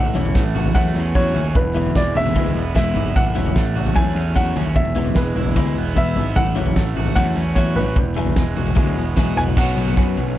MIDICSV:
0, 0, Header, 1, 6, 480
1, 0, Start_track
1, 0, Key_signature, 3, "major"
1, 0, Tempo, 400802
1, 1863, Time_signature, 4, 2, 24, 8
1, 12431, End_track
2, 0, Start_track
2, 0, Title_t, "Upright piano"
2, 0, Program_c, 0, 0
2, 0, Note_on_c, 0, 78, 75
2, 850, Note_off_c, 0, 78, 0
2, 893, Note_on_c, 0, 78, 76
2, 1344, Note_off_c, 0, 78, 0
2, 1380, Note_on_c, 0, 73, 74
2, 1869, Note_on_c, 0, 71, 68
2, 1876, Note_off_c, 0, 73, 0
2, 2350, Note_on_c, 0, 74, 72
2, 2360, Note_off_c, 0, 71, 0
2, 2570, Note_off_c, 0, 74, 0
2, 2595, Note_on_c, 0, 76, 95
2, 3282, Note_off_c, 0, 76, 0
2, 3300, Note_on_c, 0, 76, 72
2, 3786, Note_on_c, 0, 78, 77
2, 3796, Note_off_c, 0, 76, 0
2, 4737, Note_on_c, 0, 80, 88
2, 4773, Note_off_c, 0, 78, 0
2, 5186, Note_off_c, 0, 80, 0
2, 5217, Note_on_c, 0, 78, 80
2, 5697, Note_on_c, 0, 76, 78
2, 5714, Note_off_c, 0, 78, 0
2, 6146, Note_off_c, 0, 76, 0
2, 6183, Note_on_c, 0, 71, 59
2, 6630, Note_off_c, 0, 71, 0
2, 7153, Note_on_c, 0, 76, 79
2, 7595, Note_off_c, 0, 76, 0
2, 7617, Note_on_c, 0, 78, 83
2, 8551, Note_off_c, 0, 78, 0
2, 8569, Note_on_c, 0, 78, 88
2, 9046, Note_on_c, 0, 73, 62
2, 9071, Note_off_c, 0, 78, 0
2, 9290, Note_on_c, 0, 71, 68
2, 9302, Note_off_c, 0, 73, 0
2, 9743, Note_off_c, 0, 71, 0
2, 11225, Note_on_c, 0, 80, 91
2, 11285, Note_off_c, 0, 80, 0
2, 11472, Note_on_c, 0, 78, 76
2, 12139, Note_off_c, 0, 78, 0
2, 12431, End_track
3, 0, Start_track
3, 0, Title_t, "Clean electric guitar"
3, 0, Program_c, 1, 27
3, 178, Note_on_c, 1, 64, 70
3, 180, Note_on_c, 1, 61, 82
3, 186, Note_on_c, 1, 54, 73
3, 191, Note_on_c, 1, 45, 64
3, 493, Note_off_c, 1, 61, 0
3, 493, Note_off_c, 1, 64, 0
3, 496, Note_off_c, 1, 54, 0
3, 499, Note_off_c, 1, 45, 0
3, 899, Note_on_c, 1, 45, 67
3, 904, Note_on_c, 1, 54, 76
3, 907, Note_on_c, 1, 61, 75
3, 909, Note_on_c, 1, 64, 82
3, 1213, Note_off_c, 1, 45, 0
3, 1215, Note_off_c, 1, 54, 0
3, 1217, Note_off_c, 1, 61, 0
3, 1218, Note_off_c, 1, 64, 0
3, 1377, Note_on_c, 1, 45, 77
3, 1379, Note_on_c, 1, 54, 84
3, 1383, Note_on_c, 1, 61, 89
3, 1389, Note_on_c, 1, 64, 79
3, 1692, Note_off_c, 1, 45, 0
3, 1693, Note_off_c, 1, 54, 0
3, 1695, Note_off_c, 1, 61, 0
3, 1698, Note_off_c, 1, 64, 0
3, 2091, Note_on_c, 1, 64, 80
3, 2097, Note_on_c, 1, 59, 64
3, 2101, Note_on_c, 1, 56, 65
3, 2109, Note_on_c, 1, 52, 59
3, 2409, Note_off_c, 1, 64, 0
3, 2412, Note_off_c, 1, 59, 0
3, 2414, Note_off_c, 1, 56, 0
3, 2418, Note_off_c, 1, 52, 0
3, 2812, Note_on_c, 1, 52, 79
3, 2822, Note_on_c, 1, 56, 74
3, 2826, Note_on_c, 1, 59, 72
3, 2828, Note_on_c, 1, 64, 81
3, 3130, Note_off_c, 1, 52, 0
3, 3134, Note_off_c, 1, 56, 0
3, 3136, Note_off_c, 1, 59, 0
3, 3137, Note_off_c, 1, 64, 0
3, 3290, Note_on_c, 1, 52, 70
3, 3298, Note_on_c, 1, 56, 90
3, 3300, Note_on_c, 1, 59, 83
3, 3307, Note_on_c, 1, 64, 92
3, 3608, Note_off_c, 1, 52, 0
3, 3612, Note_off_c, 1, 56, 0
3, 3614, Note_off_c, 1, 59, 0
3, 3617, Note_off_c, 1, 64, 0
3, 4013, Note_on_c, 1, 64, 82
3, 4023, Note_on_c, 1, 54, 64
3, 4024, Note_on_c, 1, 61, 63
3, 4031, Note_on_c, 1, 45, 64
3, 4330, Note_off_c, 1, 64, 0
3, 4335, Note_off_c, 1, 54, 0
3, 4335, Note_off_c, 1, 61, 0
3, 4339, Note_off_c, 1, 45, 0
3, 4730, Note_on_c, 1, 45, 76
3, 4741, Note_on_c, 1, 54, 75
3, 4745, Note_on_c, 1, 61, 76
3, 4745, Note_on_c, 1, 64, 82
3, 5048, Note_off_c, 1, 45, 0
3, 5054, Note_off_c, 1, 54, 0
3, 5056, Note_off_c, 1, 61, 0
3, 5056, Note_off_c, 1, 64, 0
3, 5210, Note_on_c, 1, 45, 72
3, 5217, Note_on_c, 1, 54, 75
3, 5217, Note_on_c, 1, 61, 90
3, 5222, Note_on_c, 1, 64, 80
3, 5528, Note_off_c, 1, 45, 0
3, 5532, Note_off_c, 1, 54, 0
3, 5532, Note_off_c, 1, 61, 0
3, 5534, Note_off_c, 1, 64, 0
3, 5937, Note_on_c, 1, 64, 80
3, 5941, Note_on_c, 1, 59, 74
3, 5945, Note_on_c, 1, 56, 71
3, 5950, Note_on_c, 1, 52, 61
3, 6252, Note_off_c, 1, 64, 0
3, 6254, Note_off_c, 1, 59, 0
3, 6256, Note_off_c, 1, 56, 0
3, 6258, Note_off_c, 1, 52, 0
3, 6656, Note_on_c, 1, 52, 72
3, 6667, Note_on_c, 1, 59, 79
3, 6668, Note_on_c, 1, 56, 79
3, 6670, Note_on_c, 1, 64, 76
3, 6972, Note_off_c, 1, 52, 0
3, 6977, Note_off_c, 1, 56, 0
3, 6977, Note_off_c, 1, 59, 0
3, 6979, Note_off_c, 1, 64, 0
3, 7124, Note_on_c, 1, 52, 82
3, 7133, Note_on_c, 1, 59, 88
3, 7134, Note_on_c, 1, 56, 86
3, 7140, Note_on_c, 1, 64, 96
3, 7445, Note_off_c, 1, 52, 0
3, 7450, Note_off_c, 1, 56, 0
3, 7450, Note_off_c, 1, 59, 0
3, 7453, Note_off_c, 1, 64, 0
3, 7848, Note_on_c, 1, 64, 80
3, 7856, Note_on_c, 1, 61, 80
3, 7858, Note_on_c, 1, 54, 70
3, 7860, Note_on_c, 1, 45, 69
3, 8168, Note_off_c, 1, 64, 0
3, 8172, Note_off_c, 1, 61, 0
3, 8173, Note_off_c, 1, 54, 0
3, 8174, Note_off_c, 1, 45, 0
3, 8571, Note_on_c, 1, 45, 76
3, 8579, Note_on_c, 1, 54, 76
3, 8582, Note_on_c, 1, 61, 77
3, 8586, Note_on_c, 1, 64, 78
3, 8889, Note_off_c, 1, 45, 0
3, 8893, Note_off_c, 1, 54, 0
3, 8895, Note_off_c, 1, 61, 0
3, 8897, Note_off_c, 1, 64, 0
3, 9054, Note_on_c, 1, 45, 87
3, 9060, Note_on_c, 1, 54, 86
3, 9060, Note_on_c, 1, 61, 83
3, 9067, Note_on_c, 1, 64, 93
3, 9371, Note_off_c, 1, 45, 0
3, 9374, Note_off_c, 1, 54, 0
3, 9374, Note_off_c, 1, 61, 0
3, 9377, Note_off_c, 1, 64, 0
3, 9778, Note_on_c, 1, 68, 72
3, 9779, Note_on_c, 1, 64, 78
3, 9788, Note_on_c, 1, 54, 65
3, 9788, Note_on_c, 1, 59, 68
3, 10093, Note_off_c, 1, 64, 0
3, 10093, Note_off_c, 1, 68, 0
3, 10098, Note_off_c, 1, 54, 0
3, 10098, Note_off_c, 1, 59, 0
3, 10484, Note_on_c, 1, 54, 78
3, 10484, Note_on_c, 1, 59, 71
3, 10492, Note_on_c, 1, 64, 75
3, 10497, Note_on_c, 1, 68, 84
3, 10806, Note_off_c, 1, 54, 0
3, 10806, Note_off_c, 1, 59, 0
3, 10810, Note_off_c, 1, 64, 0
3, 10813, Note_off_c, 1, 68, 0
3, 10976, Note_on_c, 1, 54, 82
3, 10978, Note_on_c, 1, 59, 89
3, 10986, Note_on_c, 1, 68, 92
3, 10987, Note_on_c, 1, 64, 80
3, 11292, Note_off_c, 1, 54, 0
3, 11293, Note_off_c, 1, 59, 0
3, 11296, Note_off_c, 1, 68, 0
3, 11297, Note_off_c, 1, 64, 0
3, 11457, Note_on_c, 1, 47, 77
3, 11467, Note_on_c, 1, 54, 84
3, 11479, Note_on_c, 1, 59, 80
3, 11483, Note_on_c, 1, 61, 76
3, 11490, Note_on_c, 1, 66, 82
3, 12431, Note_off_c, 1, 47, 0
3, 12431, Note_off_c, 1, 54, 0
3, 12431, Note_off_c, 1, 59, 0
3, 12431, Note_off_c, 1, 61, 0
3, 12431, Note_off_c, 1, 66, 0
3, 12431, End_track
4, 0, Start_track
4, 0, Title_t, "Overdriven electric guitar"
4, 0, Program_c, 2, 29
4, 0, Note_on_c, 2, 45, 56
4, 0, Note_on_c, 2, 52, 56
4, 0, Note_on_c, 2, 64, 63
4, 167, Note_off_c, 2, 52, 0
4, 172, Note_on_c, 2, 52, 62
4, 413, Note_on_c, 2, 57, 59
4, 652, Note_off_c, 2, 64, 0
4, 657, Note_on_c, 2, 66, 59
4, 888, Note_off_c, 2, 57, 0
4, 903, Note_on_c, 2, 57, 60
4, 1136, Note_on_c, 2, 61, 64
4, 1139, Note_off_c, 2, 45, 0
4, 1363, Note_off_c, 2, 66, 0
4, 1377, Note_on_c, 2, 66, 66
4, 1413, Note_off_c, 2, 52, 0
4, 1600, Note_off_c, 2, 61, 0
4, 1615, Note_on_c, 2, 61, 58
4, 1859, Note_off_c, 2, 61, 0
4, 1860, Note_off_c, 2, 66, 0
4, 1860, Note_on_c, 2, 40, 58
4, 1863, Note_off_c, 2, 57, 0
4, 2093, Note_on_c, 2, 52, 58
4, 2342, Note_on_c, 2, 56, 59
4, 2578, Note_on_c, 2, 64, 60
4, 2807, Note_off_c, 2, 56, 0
4, 2821, Note_on_c, 2, 56, 52
4, 3059, Note_on_c, 2, 59, 54
4, 3062, Note_off_c, 2, 40, 0
4, 3290, Note_off_c, 2, 64, 0
4, 3295, Note_on_c, 2, 64, 63
4, 3520, Note_off_c, 2, 59, 0
4, 3535, Note_on_c, 2, 59, 60
4, 3779, Note_off_c, 2, 59, 0
4, 3782, Note_off_c, 2, 56, 0
4, 3785, Note_on_c, 2, 45, 57
4, 4011, Note_off_c, 2, 52, 0
4, 4016, Note_on_c, 2, 52, 61
4, 4258, Note_on_c, 2, 57, 64
4, 4488, Note_off_c, 2, 64, 0
4, 4493, Note_on_c, 2, 66, 61
4, 4726, Note_off_c, 2, 57, 0
4, 4741, Note_on_c, 2, 57, 56
4, 4976, Note_on_c, 2, 61, 55
4, 4984, Note_off_c, 2, 45, 0
4, 5210, Note_off_c, 2, 66, 0
4, 5224, Note_on_c, 2, 66, 60
4, 5260, Note_off_c, 2, 52, 0
4, 5449, Note_off_c, 2, 61, 0
4, 5463, Note_on_c, 2, 61, 58
4, 5702, Note_off_c, 2, 57, 0
4, 5703, Note_off_c, 2, 61, 0
4, 5704, Note_off_c, 2, 66, 0
4, 5705, Note_on_c, 2, 40, 60
4, 5935, Note_on_c, 2, 52, 60
4, 6189, Note_on_c, 2, 56, 63
4, 6425, Note_on_c, 2, 64, 65
4, 6650, Note_off_c, 2, 56, 0
4, 6665, Note_on_c, 2, 56, 55
4, 6904, Note_off_c, 2, 40, 0
4, 6920, Note_on_c, 2, 59, 61
4, 7147, Note_off_c, 2, 64, 0
4, 7151, Note_on_c, 2, 64, 62
4, 7378, Note_off_c, 2, 59, 0
4, 7393, Note_on_c, 2, 59, 62
4, 7624, Note_off_c, 2, 56, 0
4, 7628, Note_off_c, 2, 59, 0
4, 7630, Note_on_c, 2, 45, 61
4, 7863, Note_off_c, 2, 52, 0
4, 7868, Note_on_c, 2, 52, 56
4, 8107, Note_on_c, 2, 57, 58
4, 8337, Note_off_c, 2, 64, 0
4, 8342, Note_on_c, 2, 66, 58
4, 8563, Note_off_c, 2, 57, 0
4, 8577, Note_on_c, 2, 57, 56
4, 8809, Note_on_c, 2, 61, 65
4, 8827, Note_off_c, 2, 45, 0
4, 9052, Note_off_c, 2, 66, 0
4, 9056, Note_on_c, 2, 66, 70
4, 9066, Note_off_c, 2, 52, 0
4, 9271, Note_off_c, 2, 61, 0
4, 9286, Note_on_c, 2, 61, 55
4, 9525, Note_on_c, 2, 40, 59
4, 9535, Note_off_c, 2, 61, 0
4, 9540, Note_off_c, 2, 57, 0
4, 9561, Note_off_c, 2, 66, 0
4, 9773, Note_on_c, 2, 52, 60
4, 10015, Note_on_c, 2, 56, 65
4, 10256, Note_on_c, 2, 66, 63
4, 10476, Note_off_c, 2, 56, 0
4, 10490, Note_on_c, 2, 56, 57
4, 10733, Note_on_c, 2, 59, 57
4, 10734, Note_off_c, 2, 40, 0
4, 10963, Note_off_c, 2, 66, 0
4, 10977, Note_on_c, 2, 66, 64
4, 10978, Note_off_c, 2, 52, 0
4, 11198, Note_off_c, 2, 59, 0
4, 11213, Note_on_c, 2, 59, 55
4, 11452, Note_on_c, 2, 47, 66
4, 11457, Note_off_c, 2, 56, 0
4, 11458, Note_off_c, 2, 59, 0
4, 11460, Note_off_c, 2, 66, 0
4, 11467, Note_on_c, 2, 54, 71
4, 11472, Note_on_c, 2, 59, 75
4, 11479, Note_on_c, 2, 61, 74
4, 11484, Note_on_c, 2, 66, 87
4, 12431, Note_off_c, 2, 47, 0
4, 12431, Note_off_c, 2, 54, 0
4, 12431, Note_off_c, 2, 59, 0
4, 12431, Note_off_c, 2, 61, 0
4, 12431, Note_off_c, 2, 66, 0
4, 12431, End_track
5, 0, Start_track
5, 0, Title_t, "Picked electric bass"
5, 0, Program_c, 3, 34
5, 0, Note_on_c, 3, 33, 83
5, 150, Note_off_c, 3, 33, 0
5, 190, Note_on_c, 3, 28, 76
5, 396, Note_off_c, 3, 28, 0
5, 423, Note_on_c, 3, 33, 70
5, 842, Note_off_c, 3, 33, 0
5, 904, Note_on_c, 3, 40, 72
5, 1113, Note_off_c, 3, 40, 0
5, 1143, Note_on_c, 3, 40, 78
5, 1352, Note_off_c, 3, 40, 0
5, 1386, Note_on_c, 3, 40, 70
5, 1594, Note_off_c, 3, 40, 0
5, 1624, Note_on_c, 3, 39, 64
5, 1833, Note_off_c, 3, 39, 0
5, 1863, Note_on_c, 3, 28, 83
5, 2281, Note_off_c, 3, 28, 0
5, 2341, Note_on_c, 3, 28, 76
5, 2551, Note_off_c, 3, 28, 0
5, 2579, Note_on_c, 3, 28, 68
5, 2790, Note_off_c, 3, 28, 0
5, 2818, Note_on_c, 3, 38, 66
5, 3029, Note_off_c, 3, 38, 0
5, 3060, Note_on_c, 3, 28, 78
5, 3270, Note_off_c, 3, 28, 0
5, 3306, Note_on_c, 3, 28, 79
5, 3514, Note_off_c, 3, 28, 0
5, 3534, Note_on_c, 3, 32, 67
5, 3747, Note_off_c, 3, 32, 0
5, 3784, Note_on_c, 3, 33, 75
5, 3993, Note_off_c, 3, 33, 0
5, 4017, Note_on_c, 3, 28, 74
5, 4229, Note_off_c, 3, 28, 0
5, 4268, Note_on_c, 3, 33, 72
5, 4684, Note_off_c, 3, 33, 0
5, 4747, Note_on_c, 3, 40, 66
5, 4954, Note_off_c, 3, 40, 0
5, 4979, Note_on_c, 3, 40, 78
5, 5190, Note_off_c, 3, 40, 0
5, 5224, Note_on_c, 3, 40, 73
5, 5432, Note_off_c, 3, 40, 0
5, 5458, Note_on_c, 3, 39, 71
5, 5699, Note_on_c, 3, 28, 76
5, 5717, Note_off_c, 3, 39, 0
5, 6119, Note_off_c, 3, 28, 0
5, 6180, Note_on_c, 3, 28, 74
5, 6391, Note_off_c, 3, 28, 0
5, 6417, Note_on_c, 3, 28, 72
5, 6628, Note_off_c, 3, 28, 0
5, 6663, Note_on_c, 3, 38, 73
5, 6872, Note_off_c, 3, 38, 0
5, 6905, Note_on_c, 3, 28, 75
5, 7113, Note_off_c, 3, 28, 0
5, 7146, Note_on_c, 3, 28, 84
5, 7354, Note_off_c, 3, 28, 0
5, 7389, Note_on_c, 3, 32, 69
5, 7595, Note_off_c, 3, 32, 0
5, 7619, Note_on_c, 3, 33, 79
5, 7830, Note_off_c, 3, 33, 0
5, 7872, Note_on_c, 3, 28, 67
5, 8077, Note_off_c, 3, 28, 0
5, 8102, Note_on_c, 3, 33, 76
5, 8521, Note_off_c, 3, 33, 0
5, 8579, Note_on_c, 3, 40, 66
5, 8790, Note_off_c, 3, 40, 0
5, 8829, Note_on_c, 3, 40, 80
5, 9036, Note_off_c, 3, 40, 0
5, 9053, Note_on_c, 3, 40, 75
5, 9267, Note_off_c, 3, 40, 0
5, 9294, Note_on_c, 3, 33, 71
5, 9507, Note_off_c, 3, 33, 0
5, 9538, Note_on_c, 3, 28, 80
5, 9959, Note_off_c, 3, 28, 0
5, 10022, Note_on_c, 3, 28, 74
5, 10232, Note_off_c, 3, 28, 0
5, 10265, Note_on_c, 3, 28, 80
5, 10473, Note_off_c, 3, 28, 0
5, 10500, Note_on_c, 3, 38, 67
5, 10711, Note_off_c, 3, 38, 0
5, 10745, Note_on_c, 3, 28, 73
5, 10953, Note_off_c, 3, 28, 0
5, 10984, Note_on_c, 3, 28, 76
5, 11193, Note_off_c, 3, 28, 0
5, 11226, Note_on_c, 3, 28, 68
5, 11434, Note_off_c, 3, 28, 0
5, 11462, Note_on_c, 3, 35, 78
5, 11678, Note_off_c, 3, 35, 0
5, 11700, Note_on_c, 3, 35, 77
5, 11917, Note_off_c, 3, 35, 0
5, 11941, Note_on_c, 3, 42, 68
5, 12157, Note_off_c, 3, 42, 0
5, 12188, Note_on_c, 3, 35, 74
5, 12401, Note_off_c, 3, 35, 0
5, 12431, End_track
6, 0, Start_track
6, 0, Title_t, "Drums"
6, 62, Note_on_c, 9, 43, 69
6, 182, Note_off_c, 9, 43, 0
6, 184, Note_on_c, 9, 43, 69
6, 304, Note_off_c, 9, 43, 0
6, 306, Note_on_c, 9, 43, 72
6, 422, Note_on_c, 9, 36, 87
6, 426, Note_off_c, 9, 43, 0
6, 427, Note_on_c, 9, 38, 63
6, 542, Note_off_c, 9, 36, 0
6, 547, Note_off_c, 9, 38, 0
6, 665, Note_on_c, 9, 43, 75
6, 785, Note_off_c, 9, 43, 0
6, 785, Note_on_c, 9, 43, 76
6, 901, Note_on_c, 9, 36, 93
6, 904, Note_off_c, 9, 43, 0
6, 906, Note_on_c, 9, 43, 71
6, 1021, Note_off_c, 9, 36, 0
6, 1026, Note_off_c, 9, 43, 0
6, 1380, Note_on_c, 9, 36, 95
6, 1500, Note_off_c, 9, 36, 0
6, 1623, Note_on_c, 9, 43, 63
6, 1743, Note_off_c, 9, 43, 0
6, 1859, Note_on_c, 9, 43, 81
6, 1860, Note_on_c, 9, 36, 92
6, 1979, Note_off_c, 9, 36, 0
6, 1979, Note_off_c, 9, 43, 0
6, 2106, Note_on_c, 9, 43, 69
6, 2226, Note_off_c, 9, 43, 0
6, 2230, Note_on_c, 9, 43, 74
6, 2340, Note_on_c, 9, 36, 74
6, 2343, Note_on_c, 9, 38, 60
6, 2350, Note_off_c, 9, 43, 0
6, 2460, Note_off_c, 9, 36, 0
6, 2462, Note_off_c, 9, 38, 0
6, 2579, Note_on_c, 9, 43, 67
6, 2699, Note_off_c, 9, 43, 0
6, 2701, Note_on_c, 9, 43, 70
6, 2821, Note_off_c, 9, 43, 0
6, 2822, Note_on_c, 9, 36, 90
6, 2829, Note_on_c, 9, 43, 70
6, 2942, Note_off_c, 9, 36, 0
6, 2944, Note_off_c, 9, 43, 0
6, 2944, Note_on_c, 9, 43, 66
6, 3064, Note_off_c, 9, 43, 0
6, 3303, Note_on_c, 9, 36, 82
6, 3307, Note_on_c, 9, 38, 62
6, 3422, Note_off_c, 9, 36, 0
6, 3427, Note_off_c, 9, 38, 0
6, 3544, Note_on_c, 9, 43, 73
6, 3544, Note_on_c, 9, 47, 63
6, 3664, Note_off_c, 9, 43, 0
6, 3664, Note_off_c, 9, 47, 0
6, 3668, Note_on_c, 9, 43, 69
6, 3783, Note_on_c, 9, 36, 104
6, 3787, Note_off_c, 9, 43, 0
6, 3787, Note_on_c, 9, 43, 74
6, 3903, Note_off_c, 9, 36, 0
6, 3907, Note_off_c, 9, 43, 0
6, 3909, Note_on_c, 9, 43, 63
6, 4022, Note_off_c, 9, 43, 0
6, 4022, Note_on_c, 9, 43, 66
6, 4141, Note_off_c, 9, 43, 0
6, 4147, Note_on_c, 9, 43, 76
6, 4262, Note_on_c, 9, 36, 80
6, 4263, Note_on_c, 9, 38, 63
6, 4266, Note_off_c, 9, 43, 0
6, 4382, Note_off_c, 9, 36, 0
6, 4383, Note_off_c, 9, 38, 0
6, 4507, Note_on_c, 9, 43, 74
6, 4626, Note_off_c, 9, 43, 0
6, 4626, Note_on_c, 9, 43, 74
6, 4744, Note_on_c, 9, 36, 92
6, 4746, Note_off_c, 9, 43, 0
6, 4748, Note_on_c, 9, 43, 73
6, 4864, Note_off_c, 9, 36, 0
6, 4868, Note_off_c, 9, 43, 0
6, 5222, Note_on_c, 9, 36, 90
6, 5341, Note_off_c, 9, 36, 0
6, 5462, Note_on_c, 9, 43, 71
6, 5582, Note_off_c, 9, 43, 0
6, 5695, Note_on_c, 9, 43, 78
6, 5699, Note_on_c, 9, 36, 91
6, 5813, Note_off_c, 9, 43, 0
6, 5813, Note_on_c, 9, 43, 56
6, 5819, Note_off_c, 9, 36, 0
6, 5927, Note_off_c, 9, 43, 0
6, 5927, Note_on_c, 9, 43, 65
6, 6045, Note_off_c, 9, 43, 0
6, 6045, Note_on_c, 9, 43, 69
6, 6165, Note_off_c, 9, 43, 0
6, 6169, Note_on_c, 9, 38, 61
6, 6177, Note_on_c, 9, 36, 88
6, 6288, Note_off_c, 9, 38, 0
6, 6296, Note_off_c, 9, 36, 0
6, 6416, Note_on_c, 9, 43, 74
6, 6535, Note_off_c, 9, 43, 0
6, 6535, Note_on_c, 9, 43, 74
6, 6654, Note_off_c, 9, 43, 0
6, 6656, Note_on_c, 9, 43, 74
6, 6661, Note_on_c, 9, 36, 91
6, 6776, Note_off_c, 9, 43, 0
6, 6780, Note_off_c, 9, 36, 0
6, 7142, Note_on_c, 9, 36, 84
6, 7262, Note_off_c, 9, 36, 0
6, 7376, Note_on_c, 9, 43, 69
6, 7495, Note_off_c, 9, 43, 0
6, 7613, Note_on_c, 9, 43, 74
6, 7620, Note_on_c, 9, 36, 106
6, 7733, Note_off_c, 9, 43, 0
6, 7740, Note_off_c, 9, 36, 0
6, 7740, Note_on_c, 9, 43, 62
6, 7858, Note_off_c, 9, 43, 0
6, 7858, Note_on_c, 9, 43, 69
6, 7971, Note_off_c, 9, 43, 0
6, 7971, Note_on_c, 9, 43, 74
6, 8091, Note_off_c, 9, 43, 0
6, 8097, Note_on_c, 9, 38, 57
6, 8099, Note_on_c, 9, 36, 85
6, 8217, Note_off_c, 9, 38, 0
6, 8218, Note_off_c, 9, 36, 0
6, 8337, Note_on_c, 9, 43, 73
6, 8450, Note_off_c, 9, 43, 0
6, 8450, Note_on_c, 9, 43, 70
6, 8570, Note_off_c, 9, 43, 0
6, 8573, Note_on_c, 9, 43, 75
6, 8577, Note_on_c, 9, 36, 93
6, 8693, Note_off_c, 9, 43, 0
6, 8696, Note_off_c, 9, 36, 0
6, 9055, Note_on_c, 9, 36, 77
6, 9175, Note_off_c, 9, 36, 0
6, 9291, Note_on_c, 9, 43, 72
6, 9411, Note_off_c, 9, 43, 0
6, 9534, Note_on_c, 9, 43, 77
6, 9535, Note_on_c, 9, 36, 98
6, 9654, Note_off_c, 9, 36, 0
6, 9654, Note_off_c, 9, 43, 0
6, 9779, Note_on_c, 9, 43, 66
6, 9896, Note_off_c, 9, 43, 0
6, 9896, Note_on_c, 9, 43, 73
6, 10015, Note_off_c, 9, 43, 0
6, 10015, Note_on_c, 9, 38, 63
6, 10017, Note_on_c, 9, 36, 88
6, 10135, Note_off_c, 9, 38, 0
6, 10137, Note_off_c, 9, 36, 0
6, 10259, Note_on_c, 9, 43, 68
6, 10379, Note_off_c, 9, 43, 0
6, 10380, Note_on_c, 9, 43, 72
6, 10499, Note_off_c, 9, 43, 0
6, 10499, Note_on_c, 9, 36, 90
6, 10499, Note_on_c, 9, 43, 71
6, 10618, Note_off_c, 9, 43, 0
6, 10619, Note_off_c, 9, 36, 0
6, 10622, Note_on_c, 9, 43, 63
6, 10742, Note_off_c, 9, 43, 0
6, 10981, Note_on_c, 9, 36, 91
6, 10984, Note_on_c, 9, 38, 64
6, 11101, Note_off_c, 9, 36, 0
6, 11104, Note_off_c, 9, 38, 0
6, 11220, Note_on_c, 9, 43, 64
6, 11220, Note_on_c, 9, 47, 63
6, 11340, Note_off_c, 9, 43, 0
6, 11340, Note_off_c, 9, 47, 0
6, 11342, Note_on_c, 9, 43, 69
6, 11460, Note_off_c, 9, 43, 0
6, 11460, Note_on_c, 9, 43, 87
6, 11460, Note_on_c, 9, 49, 102
6, 11461, Note_on_c, 9, 36, 106
6, 11580, Note_off_c, 9, 43, 0
6, 11580, Note_off_c, 9, 49, 0
6, 11581, Note_off_c, 9, 36, 0
6, 11699, Note_on_c, 9, 43, 64
6, 11819, Note_off_c, 9, 43, 0
6, 11824, Note_on_c, 9, 43, 72
6, 11943, Note_off_c, 9, 43, 0
6, 11943, Note_on_c, 9, 36, 83
6, 11943, Note_on_c, 9, 43, 67
6, 12063, Note_off_c, 9, 36, 0
6, 12063, Note_off_c, 9, 43, 0
6, 12182, Note_on_c, 9, 43, 72
6, 12302, Note_off_c, 9, 43, 0
6, 12431, End_track
0, 0, End_of_file